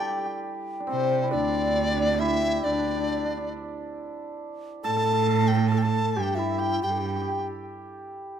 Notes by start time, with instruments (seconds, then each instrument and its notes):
Already playing: guzheng G3 D4 G4 A4 D5, hammered dulcimer E4 A4, dizi G5
0.01 hammered dulcimer G4
0.10 hammered dulcimer G4
0.18 hammered dulcimer G4
0.25 hammered dulcimer G4
0.80 hammered dulcimer D4
0.87 cello C3, hammered dulcimer C4, xiao C5, dizi C5
1.23 hammered dulcimer E4
1.31 cello D2, hammered dulcimer D4, xiao D4, dizi D5
1.97 hammered dulcimer D4, xiao D4
2.14 hammered dulcimer G4
2.19 hammered dulcimer E4, xiao E4, dizi E5
2.64 cello D2, hammered dulcimer D4, xiao D4, dizi D5
2.72 hammered dulcimer D4
2.79 hammered dulcimer D4
2.87 hammered dulcimer D4
2.96 hammered dulcimer D4
3.08 hammered dulcimer D4
3.17 hammered dulcimer D4
3.25 hammered dulcimer D4
3.31 hammered dulcimer D4
3.37 hammered dulcimer D4
4.84 cello A2, xiao A4, hammered dulcimer A4, dizi A5
4.90 hammered dulcimer A4
4.97 hammered dulcimer A4
5.04 hammered dulcimer A4
5.13 hammered dulcimer A4
5.20 hammered dulcimer A4
5.27 hammered dulcimer A4
5.34 hammered dulcimer A4
5.42 hammered dulcimer A4
5.48 hammered dulcimer A4, dizi G5
5.57 hammered dulcimer A4
5.69 hammered dulcimer A4, xiao A4, dizi A5
5.78 dizi G5
5.82 hammered dulcimer A4, xiao A4, dizi A5
6.14 cello G2, xiao G4, hammered dulcimer G4, dizi G5
6.35 hammered dulcimer E4, dizi E5
6.39 xiao E4
6.58 hammered dulcimer G4, dizi G5
6.82 cello G2, hammered dulcimer G4, xiao G4, dizi G5
6.91 hammered dulcimer G4, xiao A4
6.97 hammered dulcimer G4, xiao G4
7.06 hammered dulcimer G4
7.16 hammered dulcimer G4
7.22 hammered dulcimer G4
7.30 hammered dulcimer G4
7.38 hammered dulcimer G4